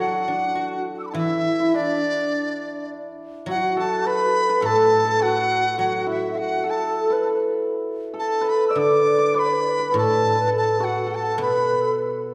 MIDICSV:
0, 0, Header, 1, 5, 480
1, 0, Start_track
1, 0, Tempo, 581959
1, 961, Time_signature, 4, 2, 24, 8
1, 5265, Tempo, 593472
1, 8145, Tempo, 573614
1, 10151, End_track
2, 0, Start_track
2, 0, Title_t, "Dizi"
2, 0, Program_c, 0, 73
2, 0, Note_on_c, 0, 78, 80
2, 690, Note_off_c, 0, 78, 0
2, 780, Note_on_c, 0, 78, 52
2, 813, Note_off_c, 0, 78, 0
2, 818, Note_on_c, 0, 88, 48
2, 850, Note_off_c, 0, 88, 0
2, 855, Note_on_c, 0, 86, 56
2, 876, Note_off_c, 0, 86, 0
2, 881, Note_on_c, 0, 83, 54
2, 905, Note_off_c, 0, 83, 0
2, 910, Note_on_c, 0, 81, 60
2, 937, Note_off_c, 0, 81, 0
2, 942, Note_on_c, 0, 78, 65
2, 960, Note_off_c, 0, 78, 0
2, 965, Note_on_c, 0, 76, 108
2, 1449, Note_on_c, 0, 74, 110
2, 1461, Note_off_c, 0, 76, 0
2, 2397, Note_off_c, 0, 74, 0
2, 2891, Note_on_c, 0, 78, 99
2, 3106, Note_off_c, 0, 78, 0
2, 3129, Note_on_c, 0, 81, 96
2, 3358, Note_on_c, 0, 83, 113
2, 3371, Note_off_c, 0, 81, 0
2, 3842, Note_on_c, 0, 81, 97
2, 3854, Note_off_c, 0, 83, 0
2, 4309, Note_on_c, 0, 78, 113
2, 4321, Note_off_c, 0, 81, 0
2, 4772, Note_off_c, 0, 78, 0
2, 4777, Note_on_c, 0, 78, 93
2, 5005, Note_off_c, 0, 78, 0
2, 5036, Note_on_c, 0, 76, 79
2, 5262, Note_on_c, 0, 78, 94
2, 5275, Note_off_c, 0, 76, 0
2, 5523, Note_on_c, 0, 81, 86
2, 5535, Note_off_c, 0, 78, 0
2, 5998, Note_off_c, 0, 81, 0
2, 6728, Note_on_c, 0, 81, 98
2, 6969, Note_on_c, 0, 83, 92
2, 6981, Note_off_c, 0, 81, 0
2, 7118, Note_off_c, 0, 83, 0
2, 7123, Note_on_c, 0, 88, 77
2, 7206, Note_on_c, 0, 86, 107
2, 7218, Note_off_c, 0, 88, 0
2, 7696, Note_on_c, 0, 83, 104
2, 7708, Note_off_c, 0, 86, 0
2, 8158, Note_off_c, 0, 83, 0
2, 8179, Note_on_c, 0, 81, 103
2, 8612, Note_off_c, 0, 81, 0
2, 8674, Note_on_c, 0, 81, 98
2, 8895, Note_on_c, 0, 78, 88
2, 8908, Note_off_c, 0, 81, 0
2, 9156, Note_on_c, 0, 81, 102
2, 9168, Note_off_c, 0, 78, 0
2, 9371, Note_off_c, 0, 81, 0
2, 9383, Note_on_c, 0, 83, 84
2, 9809, Note_off_c, 0, 83, 0
2, 10151, End_track
3, 0, Start_track
3, 0, Title_t, "Hammered dulcimer"
3, 0, Program_c, 1, 15
3, 0, Note_on_c, 1, 50, 57
3, 0, Note_on_c, 1, 62, 68
3, 0, Note_on_c, 1, 64, 51
3, 0, Note_on_c, 1, 66, 77
3, 0, Note_on_c, 1, 69, 77
3, 450, Note_off_c, 1, 66, 0
3, 453, Note_on_c, 1, 66, 57
3, 933, Note_off_c, 1, 64, 0
3, 936, Note_on_c, 1, 64, 86
3, 985, Note_off_c, 1, 50, 0
3, 1317, Note_off_c, 1, 64, 0
3, 1320, Note_on_c, 1, 64, 73
3, 1334, Note_off_c, 1, 62, 0
3, 1436, Note_on_c, 1, 62, 72
3, 2026, Note_off_c, 1, 69, 0
3, 2870, Note_off_c, 1, 66, 0
3, 2874, Note_on_c, 1, 66, 77
3, 3108, Note_on_c, 1, 69, 92
3, 3354, Note_on_c, 1, 71, 84
3, 3703, Note_off_c, 1, 71, 0
3, 3707, Note_on_c, 1, 71, 85
3, 3797, Note_off_c, 1, 69, 0
3, 3801, Note_on_c, 1, 69, 87
3, 4160, Note_off_c, 1, 69, 0
3, 4163, Note_on_c, 1, 69, 87
3, 4188, Note_off_c, 1, 64, 0
3, 4284, Note_off_c, 1, 66, 0
3, 4287, Note_on_c, 1, 66, 73
3, 4515, Note_off_c, 1, 62, 0
3, 4759, Note_off_c, 1, 66, 0
3, 4763, Note_on_c, 1, 66, 76
3, 5003, Note_on_c, 1, 64, 80
3, 5232, Note_off_c, 1, 66, 0
3, 5236, Note_on_c, 1, 66, 77
3, 5467, Note_off_c, 1, 69, 0
3, 5470, Note_on_c, 1, 69, 80
3, 5841, Note_off_c, 1, 71, 0
3, 5844, Note_on_c, 1, 71, 74
3, 6680, Note_off_c, 1, 69, 0
3, 6683, Note_on_c, 1, 69, 81
3, 6903, Note_off_c, 1, 71, 0
3, 6906, Note_on_c, 1, 71, 94
3, 7143, Note_on_c, 1, 74, 89
3, 7526, Note_off_c, 1, 74, 0
3, 7529, Note_on_c, 1, 74, 83
3, 7654, Note_off_c, 1, 71, 0
3, 7658, Note_on_c, 1, 71, 91
3, 7820, Note_off_c, 1, 64, 0
3, 7857, Note_off_c, 1, 66, 0
3, 8015, Note_off_c, 1, 71, 0
3, 8018, Note_on_c, 1, 71, 83
3, 8119, Note_off_c, 1, 69, 0
3, 8123, Note_on_c, 1, 69, 70
3, 8482, Note_off_c, 1, 71, 0
3, 8486, Note_on_c, 1, 71, 76
3, 8587, Note_off_c, 1, 69, 0
3, 8591, Note_on_c, 1, 69, 81
3, 8862, Note_on_c, 1, 66, 82
3, 9080, Note_off_c, 1, 69, 0
3, 9084, Note_on_c, 1, 69, 82
3, 9339, Note_off_c, 1, 71, 0
3, 9342, Note_on_c, 1, 71, 75
3, 9568, Note_off_c, 1, 74, 0
3, 10151, Note_off_c, 1, 66, 0
3, 10151, Note_off_c, 1, 69, 0
3, 10151, Note_off_c, 1, 71, 0
3, 10151, End_track
4, 0, Start_track
4, 0, Title_t, "Xiao"
4, 0, Program_c, 2, 77
4, 0, Note_on_c, 2, 66, 75
4, 463, Note_off_c, 2, 66, 0
4, 468, Note_on_c, 2, 66, 68
4, 697, Note_off_c, 2, 66, 0
4, 957, Note_on_c, 2, 64, 85
4, 1295, Note_off_c, 2, 64, 0
4, 1318, Note_on_c, 2, 64, 81
4, 1437, Note_on_c, 2, 62, 77
4, 1449, Note_off_c, 2, 64, 0
4, 2391, Note_off_c, 2, 62, 0
4, 2867, Note_on_c, 2, 66, 77
4, 2934, Note_on_c, 2, 64, 67
4, 2946, Note_off_c, 2, 66, 0
4, 2980, Note_on_c, 2, 66, 87
4, 2992, Note_off_c, 2, 64, 0
4, 3347, Note_on_c, 2, 71, 102
4, 3359, Note_off_c, 2, 66, 0
4, 3818, Note_on_c, 2, 69, 96
4, 3830, Note_off_c, 2, 71, 0
4, 4312, Note_on_c, 2, 66, 82
4, 4324, Note_off_c, 2, 69, 0
4, 4781, Note_off_c, 2, 66, 0
4, 4786, Note_on_c, 2, 66, 79
4, 5179, Note_off_c, 2, 66, 0
4, 5227, Note_on_c, 2, 69, 48
4, 5277, Note_on_c, 2, 66, 69
4, 5289, Note_off_c, 2, 69, 0
4, 5498, Note_off_c, 2, 66, 0
4, 5503, Note_on_c, 2, 69, 97
4, 5867, Note_on_c, 2, 71, 78
4, 5879, Note_off_c, 2, 69, 0
4, 5988, Note_off_c, 2, 71, 0
4, 6718, Note_on_c, 2, 69, 81
4, 7144, Note_on_c, 2, 76, 62
4, 7157, Note_off_c, 2, 69, 0
4, 7207, Note_on_c, 2, 74, 91
4, 7219, Note_off_c, 2, 76, 0
4, 7676, Note_on_c, 2, 71, 73
4, 7688, Note_off_c, 2, 74, 0
4, 7756, Note_on_c, 2, 74, 71
4, 7768, Note_off_c, 2, 71, 0
4, 7815, Note_on_c, 2, 71, 72
4, 7827, Note_off_c, 2, 74, 0
4, 7878, Note_on_c, 2, 74, 76
4, 7890, Note_off_c, 2, 71, 0
4, 7939, Note_on_c, 2, 71, 80
4, 7951, Note_off_c, 2, 74, 0
4, 8177, Note_on_c, 2, 69, 88
4, 8189, Note_off_c, 2, 71, 0
4, 8524, Note_off_c, 2, 69, 0
4, 8529, Note_on_c, 2, 71, 78
4, 8631, Note_off_c, 2, 71, 0
4, 8641, Note_on_c, 2, 69, 85
4, 8881, Note_on_c, 2, 66, 73
4, 8894, Note_off_c, 2, 69, 0
4, 9124, Note_on_c, 2, 69, 83
4, 9137, Note_off_c, 2, 66, 0
4, 9348, Note_on_c, 2, 71, 97
4, 9360, Note_off_c, 2, 69, 0
4, 9708, Note_on_c, 2, 69, 76
4, 9720, Note_off_c, 2, 71, 0
4, 9825, Note_off_c, 2, 69, 0
4, 10151, End_track
5, 0, Start_track
5, 0, Title_t, "Guzheng"
5, 0, Program_c, 3, 107
5, 0, Note_on_c, 3, 54, 52
5, 230, Note_on_c, 3, 62, 47
5, 456, Note_on_c, 3, 66, 44
5, 944, Note_on_c, 3, 52, 60
5, 1204, Note_off_c, 3, 62, 0
5, 1431, Note_off_c, 3, 54, 0
5, 1434, Note_off_c, 3, 66, 0
5, 2385, Note_off_c, 3, 52, 0
5, 2855, Note_on_c, 3, 54, 61
5, 3812, Note_on_c, 3, 45, 64
5, 4302, Note_off_c, 3, 54, 0
5, 4773, Note_on_c, 3, 54, 58
5, 5256, Note_off_c, 3, 45, 0
5, 6224, Note_off_c, 3, 54, 0
5, 7183, Note_on_c, 3, 50, 58
5, 8141, Note_on_c, 3, 45, 72
5, 8624, Note_off_c, 3, 50, 0
5, 9345, Note_off_c, 3, 45, 0
5, 9346, Note_on_c, 3, 47, 71
5, 10151, Note_off_c, 3, 47, 0
5, 10151, End_track
0, 0, End_of_file